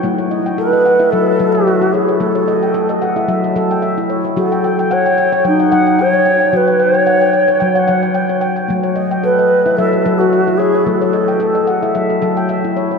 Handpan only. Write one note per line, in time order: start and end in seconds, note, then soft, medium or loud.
0.00 0.31 A3 medium
0.00 0.19 G5 medium
0.04 0.96 F#3 medium
0.18 0.58 C#5 medium
0.31 0.72 D#5 medium
0.46 0.85 G5 medium
0.58 0.85 A4 medium
0.73 1.12 D#5 medium
0.86 1.27 F#5 medium
1.00 1.27 E4 medium
1.00 1.11 E5 medium
1.12 1.36 F#3 medium
1.12 1.54 E5 medium
1.39 2.09 F#3 medium
1.39 1.66 A4 medium
1.55 1.66 E5 medium
1.67 2.09 E5 medium
1.82 2.08 E4 medium
1.94 2.07 C#5 medium
2.09 2.34 C#5 medium
2.20 3.13 F#3 medium
2.20 2.48 A3 medium
2.35 2.74 C#5 medium
2.48 2.88 D#5 medium
2.63 3.02 G5 medium
2.74 3.01 A4 medium
2.89 3.28 D#5 medium
3.02 3.44 F#5 medium
3.16 3.43 E4 medium
3.16 3.27 E5 soft
3.28 3.51 F#3 medium
3.28 3.70 E5 medium
3.44 3.55 A4 medium
3.56 4.25 F#3 medium
3.56 3.83 A4 medium
3.71 4.10 G5 medium
3.82 4.24 E5 medium
3.98 4.25 E4 medium
4.10 4.24 C#5 medium
4.25 4.52 C#5 soft
4.36 5.29 F#3 medium
4.36 4.64 F#4 medium
4.52 4.63 G5 medium
4.64 4.78 G5 medium
4.79 5.05 G5 medium
4.91 5.18 F#5 medium
5.06 5.17 G5 medium
5.18 5.31 G5 medium
5.32 5.60 C#5 medium
5.32 5.44 G5 medium
5.45 5.68 F#3 medium
5.45 5.85 G5 medium
5.60 5.71 F#5 medium
5.72 6.41 F#3 medium
5.72 5.99 F#5 medium
5.87 5.98 G5 medium
5.99 6.24 G5 medium
6.14 6.41 C#5 medium
6.26 6.40 G5 medium
6.41 6.66 G5 medium
6.53 7.46 F#3 medium
6.53 6.80 F#4 medium
6.68 6.78 G5 medium
6.80 6.93 G5 medium
6.94 7.20 G5 medium
7.07 7.34 F#5 medium
7.21 7.32 G5 medium
7.33 7.47 G5 medium
7.48 7.76 C#5 medium
7.48 7.59 G5 medium
7.60 7.85 F#3 medium
7.60 8.02 G5 medium
7.76 7.86 F#5 medium
7.88 8.58 F#3 medium
7.88 8.15 F#5 medium
8.03 8.13 G5 medium
8.14 8.40 G5 medium
8.29 8.57 C#5 medium
8.41 8.55 G5 medium
8.56 8.84 G5 medium
8.68 9.62 F#3 medium
8.68 8.96 A3 medium
8.83 9.23 C#5 medium
8.96 9.38 D#5 medium
9.11 9.51 G5 medium
9.23 9.51 A4 medium
9.39 9.78 D#5 medium
9.66 9.93 E4 medium
9.66 9.77 E5 medium
9.78 10.01 F#3 medium
9.78 10.19 E5 medium
9.93 10.04 A4 medium
10.05 10.75 F#3 medium
10.05 10.33 A4 medium
10.21 10.32 E5 medium
10.33 10.75 E5 medium
10.47 10.75 E4 medium
10.60 10.73 C#5 medium
10.74 11.00 C#5 soft
10.86 11.79 F#3 medium
10.86 11.14 A3 medium
11.01 11.41 C#5 medium
11.13 11.54 D#5 medium
11.28 11.68 G5 medium
11.40 11.68 A4 medium
11.55 11.95 D#5 medium
11.67 12.10 F#5 medium
11.83 12.10 E4 medium
11.83 11.94 E5 medium
11.95 12.18 F#3 medium
11.95 12.37 E5 medium
12.10 12.21 A4 medium
12.22 12.92 F#3 medium
12.22 12.49 A4 medium
12.37 12.76 G5 medium
12.49 12.91 E5 medium
12.64 12.91 E4 medium
12.77 12.90 C#5 medium
12.91 12.99 C#5 soft